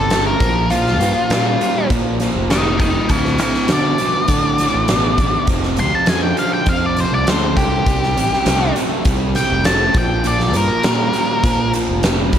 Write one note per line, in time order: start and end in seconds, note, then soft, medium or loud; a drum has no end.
0.00 0.34 G1 medium
0.00 0.26 A4 medium
0.10 0.38 C3 medium
0.10 0.38 A3 medium
0.10 snare medium
0.10 closed hi-hat medium
0.27 0.70 A#4 medium
0.40 1.00 A#1 medium
0.40 0.68 A#2 medium
0.40 0.68 F3 medium
0.40 kick loud
0.40 closed hi-hat medium
0.70 0.98 A#2 medium
0.70 0.98 F3 medium
0.70 1.87 F4 medium
0.70 closed hi-hat medium
0.87 snare soft
1.00 1.13 G2 medium
1.00 1.28 A#2 medium
1.00 1.28 F3 medium
1.00 closed hi-hat medium
1.30 1.55 A#2 medium
1.30 1.58 A#2 medium
1.30 1.58 G3 medium
1.30 snare medium
1.30 closed hi-hat medium
1.61 1.88 A#2 medium
1.61 1.88 G3 medium
1.61 closed hi-hat medium
1.90 2.17 A#2 medium
1.90 2.27 A#2 medium
1.90 2.17 F3 medium
1.90 kick medium
1.90 closed hi-hat medium
2.20 2.47 A#2 medium
2.20 2.48 F3 medium
2.20 snare soft
2.20 closed hi-hat medium
2.36 2.98 F1 medium
2.50 2.77 A#2 medium
2.50 2.77 G3 medium
2.50 2.79 A#4 medium
2.50 2.79 G5 loud
2.50 snare medium
2.50 closed hi-hat medium
2.80 3.07 A#2 medium
2.80 3.07 G3 medium
2.80 3.08 A#4 medium
2.80 3.09 G5 medium
2.80 kick medium
2.80 closed hi-hat medium
3.09 3.40 D2 medium
3.09 3.37 D2 medium
3.09 3.37 A2 medium
3.09 3.38 A4 medium
3.09 3.39 F5 medium
3.09 kick medium
3.09 closed hi-hat medium
3.25 snare soft
3.38 3.66 D2 medium
3.38 3.67 A2 medium
3.38 3.52 C3 medium
3.38 3.69 A4 medium
3.38 closed hi-hat medium
3.43 3.70 F5 medium
3.54 snare soft
3.68 3.96 D2 medium
3.68 3.97 B2 loud
3.68 3.94 D3 loud
3.68 snare medium
3.68 closed hi-hat medium
3.72 5.46 D5 loud
3.98 4.26 D2 medium
3.98 4.26 B2 medium
3.98 closed hi-hat medium
4.28 4.56 D2 medium
4.28 4.56 A2 medium
4.28 4.66 D3 loud
4.28 kick medium
4.28 closed hi-hat medium
4.58 4.86 D2 medium
4.58 4.86 A2 medium
4.58 snare soft
4.58 closed hi-hat medium
4.74 5.36 A1 medium
4.88 5.16 D2 medium
4.88 5.17 B2 loud
4.88 snare medium
4.88 closed hi-hat medium
5.18 5.46 D2 medium
5.18 5.47 B2 medium
5.18 kick medium
5.18 closed hi-hat medium
5.47 5.80 F1 medium
5.47 5.76 F2 medium
5.47 5.76 C3 medium
5.47 kick medium
5.47 closed hi-hat medium
5.63 snare soft
5.77 5.91 D2 medium
5.77 6.06 F2 medium
5.77 6.06 C3 medium
5.77 5.95 C6 medium
5.77 closed hi-hat medium
5.95 6.08 A5 medium
6.06 6.32 F2 medium
6.06 6.35 F2 medium
6.06 6.36 D3 loud
6.06 6.22 G#5 medium
6.06 snare medium
6.06 closed hi-hat medium
6.23 6.37 G5 medium
6.37 6.65 F2 medium
6.37 6.65 D3 medium
6.37 6.53 F5 medium
6.37 closed hi-hat medium
6.54 6.68 G5 medium
6.66 7.04 F2 medium
6.66 6.95 F2 medium
6.66 6.95 C3 medium
6.66 6.86 F5 medium
6.66 kick medium
6.66 closed hi-hat medium
6.86 7.00 D5 medium
6.97 7.25 F2 medium
6.97 7.25 C3 medium
6.97 7.13 C5 medium
6.97 closed hi-hat medium
7.12 7.24 C2 medium
7.12 7.29 D5 medium
7.27 7.54 D2 medium
7.27 7.54 F2 medium
7.27 7.54 D3 loud
7.27 7.57 C5 medium
7.27 snare loud
7.27 closed hi-hat medium
7.57 7.84 C2 medium
7.57 7.84 F2 medium
7.57 7.84 D3 medium
7.57 8.73 G4 loud
7.57 kick loud
7.57 closed hi-hat medium
7.86 8.16 C2 medium
7.86 8.14 C3 medium
7.86 8.14 G3 medium
7.86 kick medium
7.86 closed hi-hat medium
8.03 snare soft
8.16 8.29 A1 medium
8.16 8.43 C3 medium
8.16 8.44 G3 medium
8.16 closed hi-hat medium
8.33 snare soft
8.45 8.71 C2 medium
8.45 8.73 C3 medium
8.45 8.73 A3 loud
8.45 snare medium
8.45 closed hi-hat medium
8.75 9.03 C3 medium
8.75 9.03 A3 medium
8.75 closed hi-hat medium
9.05 9.43 C2 medium
9.05 9.33 C3 medium
9.05 9.33 G3 medium
9.05 kick loud
9.05 closed hi-hat medium
9.35 9.63 C3 medium
9.35 9.63 G3 medium
9.35 9.65 G5 loud
9.35 snare soft
9.35 closed hi-hat medium
9.50 9.88 F1 medium
9.64 9.93 C3 medium
9.64 9.93 A3 medium
9.64 9.95 A5 medium
9.64 snare medium
9.64 closed hi-hat medium
9.94 10.55 A#1 medium
9.94 10.22 A#2 medium
9.94 10.22 F3 medium
9.94 10.26 G5 medium
9.94 kick loud
9.94 closed hi-hat medium
10.24 10.52 A#2 medium
10.24 10.52 F3 medium
10.24 10.55 D5 medium
10.24 closed hi-hat medium
10.40 snare soft
10.54 10.68 G2 medium
10.54 10.82 A#2 medium
10.54 10.82 F3 medium
10.54 11.72 A#4 medium
10.54 closed hi-hat medium
10.83 11.11 A#2 medium
10.83 11.09 A#2 medium
10.83 11.11 G3 medium
10.83 snare loud
10.83 closed hi-hat medium
11.13 11.42 A#2 medium
11.13 11.42 G3 medium
11.13 closed hi-hat medium
11.44 11.81 A#2 medium
11.44 11.71 A#2 medium
11.44 11.71 F3 medium
11.44 kick loud
11.44 closed hi-hat medium
11.73 12.01 A#2 medium
11.73 12.01 F3 medium
11.73 closed hi-hat medium
11.89 12.39 F1 medium
12.03 12.31 A#2 medium
12.03 12.31 G3 medium
12.03 snare loud
12.03 closed hi-hat medium
12.33 12.39 A#2 medium
12.33 12.39 G3 medium
12.33 kick medium
12.33 closed hi-hat medium